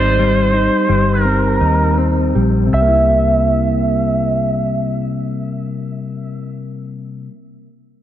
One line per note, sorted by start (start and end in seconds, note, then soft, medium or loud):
0.00 0.67 G#1 medium
0.00 0.19 G3 medium
0.00 1.24 C4 medium
0.00 0.52 D#4 medium
0.00 1.22 C5 medium
0.19 0.88 G3 soft
0.53 1.59 D#4 medium
0.89 1.58 G1 medium
0.89 2.35 G3 medium
1.22 1.97 C4 medium
1.22 1.95 A#4 medium
1.61 2.31 D#2 medium
1.61 2.81 D#4 soft
1.97 2.81 C4 soft
2.35 2.71 A#1 medium
2.35 2.75 G3 soft
2.67 7.27 C3 medium
2.73 7.26 C2 medium
2.73 7.31 G3 medium
2.73 6.57 E5 medium
2.82 7.34 A#3 medium
2.88 7.38 E4 medium